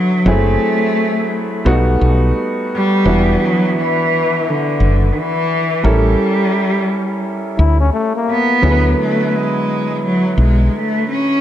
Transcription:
0.00 0.22 D3 medium
0.00 0.22 F#3 medium
0.00 0.31 F#3 medium
0.00 0.22 B3 medium
0.00 0.22 C#4 medium
0.00 0.23 E4 medium
0.26 0.56 F#1 loud
0.26 1.63 F#3 medium
0.26 1.63 A3 medium
0.26 1.63 C4 medium
0.26 1.64 E4 medium
0.26 1.64 G#4 medium
0.30 1.68 A3 medium
1.65 1.96 B1 loud
1.65 3.02 G3 medium
1.65 3.03 A3 medium
1.65 3.03 B3 medium
1.65 3.03 D#4 medium
1.65 3.03 F#4 medium
2.01 2.31 B1 loud
2.75 3.46 G3 loud
3.05 3.35 E1 loud
3.05 5.81 E3 medium
3.05 5.81 B3 medium
3.05 5.81 D4 medium
3.05 5.81 E4 medium
3.05 5.82 F#4 medium
3.44 3.77 F#3 loud
3.79 4.51 E3 medium
4.49 5.14 D3 medium
4.80 5.10 F#1 medium
5.12 5.19 D#3 medium
5.18 5.89 E3 medium
5.83 6.15 A1 medium
5.83 8.59 G3 medium
5.83 7.26 G3 loud
5.83 8.60 C#4 medium
5.83 8.60 E4 medium
5.83 8.60 A4 medium
5.83 8.59 A#4 medium
7.58 7.89 D2 medium
7.58 7.80 E4 medium
7.81 7.92 C#4 medium
7.93 8.15 A3 medium
8.16 8.61 A#3 medium
8.30 8.95 B3 loud
8.62 8.93 D2 medium
8.62 11.39 D3 medium
8.62 11.38 F#3 medium
8.62 11.38 B3 medium
8.62 11.39 E4 medium
8.62 8.73 G#4 medium
8.71 11.41 B4 medium
9.00 9.30 A3 medium
9.30 9.36 A3 medium
9.35 10.04 G#3 medium
10.06 10.37 F#3 medium
10.38 10.68 B1 medium
10.38 10.69 G#3 medium
10.69 10.78 G#3 medium
10.76 11.09 A3 medium
11.10 11.41 C#4 loud

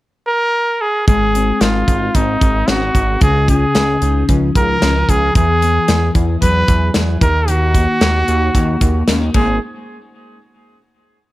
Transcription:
0.27 0.83 A#4 loud
0.81 1.07 G#4 medium
1.08 1.52 G#1 medium
1.08 4.29 G#3 medium
1.08 1.63 G#4 medium
1.08 kick loud
1.08 closed hi-hat medium
1.35 2.14 C4 medium
1.35 closed hi-hat medium
1.61 1.83 G#1 loud
1.61 2.17 F4 medium
1.61 2.40 A#4 medium
1.61 snare loud
1.61 closed hi-hat medium
1.88 2.10 G#1 medium
1.88 2.68 D#4 medium
1.88 kick medium
1.88 closed hi-hat medium
2.15 2.37 G#1 medium
2.15 3.27 C4 medium
2.15 2.70 D#4 medium
2.15 kick medium
2.15 closed hi-hat medium
2.41 2.64 G#1 medium
2.41 2.94 A#4 medium
2.41 kick medium
2.41 closed hi-hat medium
2.68 2.90 G#1 loud
2.68 2.82 C#4 medium
2.68 3.22 F#4 medium
2.68 snare medium
2.68 closed hi-hat medium
2.82 3.27 D#4 soft
2.95 3.17 G#1 loud
2.95 3.27 A#4 medium
2.95 kick medium
2.95 closed hi-hat medium
3.21 3.66 C#2 loud
3.21 5.35 C#3 medium
3.21 3.47 G#4 medium
3.21 kick loud
3.21 closed hi-hat medium
3.48 4.81 C#4 medium
3.48 4.25 G#4 medium
3.48 kick medium
3.48 closed hi-hat medium
3.75 3.97 C#2 loud
3.75 4.55 G#4 medium
3.75 snare medium
3.75 closed hi-hat medium
4.02 4.24 C#2 medium
4.02 4.82 D#4 medium
4.02 closed hi-hat medium
4.29 4.51 C#2 loud
4.29 5.41 F3 medium
4.29 kick medium
4.29 closed hi-hat medium
4.55 4.77 C#2 medium
4.55 4.69 F#4 medium
4.55 5.11 A#4 loud
4.55 kick medium
4.55 closed hi-hat medium
4.69 5.07 G#4 soft
4.82 5.04 C#2 loud
4.82 4.95 C#4 medium
4.82 snare medium
4.82 closed hi-hat medium
4.95 5.41 D#4 soft
5.09 5.31 C#2 loud
5.09 5.41 G#4 medium
5.09 5.36 G#4 medium
5.09 kick medium
5.09 closed hi-hat medium
5.35 5.79 E2 medium
5.35 7.27 E3 medium
5.35 6.12 G#4 medium
5.35 kick loud
5.35 closed hi-hat medium
5.62 7.27 B3 medium
5.62 closed hi-hat medium
5.88 6.11 E2 loud
5.88 6.68 G#4 medium
5.88 snare loud
5.88 closed hi-hat medium
6.15 6.37 E2 medium
6.15 6.94 E4 medium
6.15 kick medium
6.15 closed hi-hat medium
6.42 6.64 E2 medium
6.42 7.21 F#3 medium
6.42 6.92 B4 loud
6.42 kick medium
6.42 closed hi-hat medium
6.68 6.90 E2 medium
6.68 7.27 G#4 medium
6.68 kick medium
6.68 closed hi-hat medium
6.94 7.17 E2 medium
6.94 7.27 E4 medium
6.94 snare medium
6.94 closed hi-hat medium
7.21 7.87 D#2 loud
7.21 7.48 D#3 medium
7.21 7.51 A#4 loud
7.21 kick medium
7.21 closed hi-hat medium
7.48 9.34 D#3 medium
7.48 9.08 F#4 medium
7.48 closed hi-hat medium
7.75 8.55 A#3 medium
7.75 kick medium
7.75 closed hi-hat medium
8.01 8.23 D#2 loud
8.01 snare loud
8.01 closed hi-hat medium
8.28 8.50 D#2 medium
8.28 9.08 D#4 medium
8.28 closed hi-hat medium
8.55 8.77 D#2 loud
8.55 9.35 A#3 medium
8.55 kick medium
8.55 closed hi-hat medium
8.81 9.03 D#2 medium
8.81 9.35 F#4 medium
8.81 kick medium
8.81 closed hi-hat medium
9.08 9.30 D#2 loud
9.08 9.22 C#4 medium
9.08 snare medium
9.08 closed hi-hat medium
9.22 9.35 D#4 soft
9.34 9.59 G#1 medium
9.34 9.56 G#3 medium
9.34 9.56 A#3 medium
9.34 9.56 D#4 medium
9.34 9.60 G#4 medium
9.34 9.57 G#4 medium
9.34 9.57 C5 medium
9.34 kick medium
9.34 crash medium

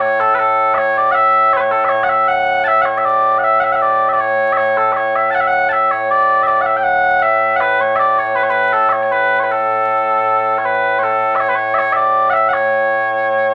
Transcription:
0.00 13.54 A2 medium
0.00 0.20 C#5 loud
0.20 0.35 A4 medium
0.35 0.39 B4 medium
0.39 0.74 A4 medium
0.74 0.97 C#5 loud
0.74 0.78 E5 loud
0.97 1.12 D5 medium
1.12 1.53 E5 loud
1.12 1.15 F#5 loud
1.53 1.60 B4 medium
1.53 1.57 C#5 loud
1.60 1.71 C#5 loud
1.71 1.85 A4 medium
1.85 1.89 E5 loud
1.89 2.03 C#5 loud
2.03 2.09 F#5 medium
2.09 2.28 E5 medium
2.28 2.64 F#5 loud
2.64 2.82 E5 loud
2.64 2.67 A5 loud
2.82 2.98 C#5 medium
2.82 2.85 F#5 medium
2.98 3.05 E5 medium
3.05 3.38 D5 loud
3.38 3.44 F#5 medium
3.44 3.60 E5 loud
3.60 3.72 E5 medium
3.60 3.64 F#5 medium
3.72 3.82 E5 medium
3.72 3.76 F#5 medium
3.82 4.09 D5 medium
4.09 4.20 D5 medium
4.09 4.13 E5 medium
4.20 4.52 C#5 loud
4.52 4.57 E5 loud
4.57 4.77 C#5 loud
4.77 4.92 A4 medium
4.92 4.96 E5 medium
4.96 5.15 C#5 medium
5.15 5.31 E5 medium
5.31 5.41 F#5 loud
5.31 5.34 A5 loud
5.41 5.47 E5 medium
5.47 5.69 F#5 loud
5.69 5.91 E5 loud
5.69 5.72 A5 loud
5.91 6.10 C#5 medium
6.10 6.43 D5 loud
6.43 6.47 E5 medium
6.47 6.61 D5 medium
6.61 6.66 F#5 medium
6.66 6.77 E5 medium
6.77 6.83 G5 medium
6.83 7.22 F#5 loud
7.22 7.56 E5 loud
7.56 7.61 F#5 medium
7.61 7.81 B4 medium
7.81 7.96 C#5 medium
7.96 8.18 D5 loud
7.96 7.99 E5 loud
8.18 8.36 C#5 medium
8.36 8.43 B4 medium
8.43 8.50 C#5 medium
8.50 8.73 B4 medium
8.73 8.89 A4 medium
8.89 9.03 C#5 medium
8.89 8.92 E5 medium
9.03 9.12 C#5 medium
9.12 9.40 B4 medium
9.40 9.52 B4 medium
9.40 9.43 C#5 medium
9.52 10.58 A4 medium
10.58 10.65 C#5 medium
10.65 10.99 B4 medium
10.99 11.03 C#5 medium
11.03 11.36 A4 medium
11.36 11.40 E5 medium
11.40 11.49 C#5 medium
11.49 11.55 B4 medium
11.55 11.74 C#5 medium
11.74 11.78 E5 loud
11.78 11.92 C#5 loud
11.92 12.30 D5 medium
11.92 11.96 E5 medium
12.30 12.49 E5 medium
12.30 12.33 F#5 medium
12.49 12.53 F#5 medium
12.53 13.54 C#5 medium

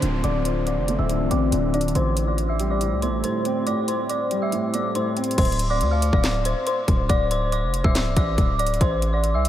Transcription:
0.00 0.23 D1 loud
0.00 0.24 D3 medium
0.00 1.92 D3 medium
0.00 0.24 A3 medium
0.00 0.66 C4 medium
0.00 1.92 C4 medium
0.00 1.10 D4 medium
0.00 1.92 F4 medium
0.00 0.22 C5 medium
0.00 0.21 C6 medium
0.00 closed hi-hat medium
0.00 downlifter medium
0.24 0.79 D1 loud
0.24 1.08 D3 medium
0.24 0.43 D5 medium
0.24 0.42 D6 loud
0.24 closed hi-hat medium
0.45 0.64 C5 medium
0.45 0.64 C6 medium
0.45 closed hi-hat medium
0.67 0.97 D5 medium
0.67 0.97 D6 medium
0.67 closed hi-hat medium
0.77 0.98 F1 medium
0.88 1.95 A3 medium
0.88 closed hi-hat medium
0.98 1.22 D1 loud
0.98 1.29 E5 medium
0.98 1.29 E6 medium
1.09 1.51 D3 medium
1.09 closed hi-hat medium
1.20 1.30 C1 loud
1.31 1.51 A1 loud
1.31 1.95 C4 medium
1.31 1.71 D5 medium
1.31 1.71 D6 medium
1.31 closed hi-hat medium
1.52 1.93 D1 loud
1.52 1.95 D3 loud
1.52 closed hi-hat medium
1.73 1.95 D4 medium
1.73 1.92 D5 medium
1.73 1.92 D6 medium
1.73 closed hi-hat medium
1.81 closed hi-hat medium
1.88 closed hi-hat medium
1.95 2.93 A1 loud
1.95 2.80 A2 medium
1.95 5.35 A3 medium
1.95 5.35 G4 medium
1.95 5.35 C5 medium
1.95 2.26 C5 medium
1.95 2.25 C6 loud
1.95 closed hi-hat medium
2.17 closed hi-hat medium
2.27 2.46 D5 medium
2.27 2.46 D6 medium
2.38 closed hi-hat medium
2.49 2.68 E5 medium
2.49 2.67 E6 medium
2.59 3.67 G3 medium
2.59 closed hi-hat medium
2.70 3.01 D5 medium
2.70 3.00 D6 medium
2.81 3.22 A2 medium
2.81 closed hi-hat medium
2.92 3.09 C2 loud
3.02 4.10 A3 medium
3.02 3.21 C5 medium
3.02 3.21 C6 medium
3.02 closed hi-hat medium
3.08 3.23 A1 loud
3.24 3.65 A2 medium
3.24 3.65 C5 medium
3.24 3.64 C6 medium
3.24 closed hi-hat medium
3.45 4.53 C4 medium
3.45 closed hi-hat medium
3.66 4.51 A2 medium
3.66 3.86 D5 medium
3.66 3.85 D6 loud
3.66 closed hi-hat medium
3.88 4.07 C5 medium
3.88 4.07 C6 medium
3.88 closed hi-hat medium
4.09 4.40 D5 medium
4.09 4.40 D6 medium
4.09 closed hi-hat medium
4.31 5.38 G3 medium
4.31 closed hi-hat medium
4.42 4.72 E5 medium
4.42 4.72 E6 medium
4.52 4.94 A2 medium
4.52 closed hi-hat medium
4.74 5.38 A3 medium
4.74 4.93 D5 medium
4.74 4.92 D6 medium
4.74 closed hi-hat medium
4.95 5.38 A2 medium
4.95 5.14 C5 medium
4.95 5.14 C6 medium
4.95 closed hi-hat medium
5.17 5.38 C4 medium
5.17 closed hi-hat medium
5.24 closed hi-hat medium
5.31 closed hi-hat medium
5.38 5.82 D1 loud
5.38 5.69 C5 medium
5.38 5.68 C6 loud
5.38 kick medium
5.38 closed hi-hat medium
5.38 crash medium
5.45 closed hi-hat medium
5.52 closed hi-hat medium
5.59 closed hi-hat medium
5.70 5.89 D5 medium
5.70 5.89 D6 medium
5.81 6.11 D2 loud
5.81 closed hi-hat medium
5.91 6.11 F5 medium
5.91 6.10 F6 medium
6.02 closed hi-hat medium
6.13 6.54 D1 loud
6.13 6.44 D5 medium
6.13 6.43 D6 medium
6.13 kick loud
6.24 snare loud
6.24 clap medium
6.24 closed hi-hat medium
6.45 6.64 C5 medium
6.45 6.64 C6 medium
6.45 closed hi-hat medium
6.67 7.07 C5 medium
6.67 7.07 C6 medium
6.67 closed hi-hat medium
6.88 7.09 D1 loud
6.88 kick medium
6.88 closed hi-hat medium
7.09 7.64 D1 loud
7.09 7.28 D5 medium
7.09 7.28 D6 loud
7.09 kick loud
7.09 closed hi-hat medium
7.31 7.50 C5 medium
7.31 7.50 C6 medium
7.31 closed hi-hat medium
7.52 7.83 D5 medium
7.52 7.83 D6 medium
7.52 closed hi-hat medium
7.63 7.83 F1 loud
7.74 closed hi-hat medium
7.84 8.07 D1 loud
7.84 8.15 E5 medium
7.84 8.15 E6 medium
7.84 kick loud
7.95 snare loud
7.95 clap medium
7.95 closed hi-hat medium
8.06 8.16 C1 loud
8.16 8.37 A1 loud
8.16 8.57 D5 medium
8.16 8.57 D6 medium
8.16 kick loud
8.16 closed hi-hat medium
8.38 8.79 D1 loud
8.38 kick loud
8.38 closed hi-hat medium
8.59 8.78 D5 medium
8.59 8.78 D6 medium
8.59 closed hi-hat medium
8.67 closed hi-hat medium
8.74 closed hi-hat medium
8.81 9.36 A1 loud
8.81 9.12 C5 medium
8.81 9.11 C6 loud
8.81 kick loud
8.81 closed hi-hat medium
9.02 closed hi-hat medium
9.13 9.32 D5 medium
9.13 9.32 D6 medium
9.24 closed hi-hat medium
9.34 9.47 C2 loud
9.34 9.49 E5 medium
9.34 9.49 E6 medium
9.45 9.49 A1 loud
9.45 closed hi-hat medium

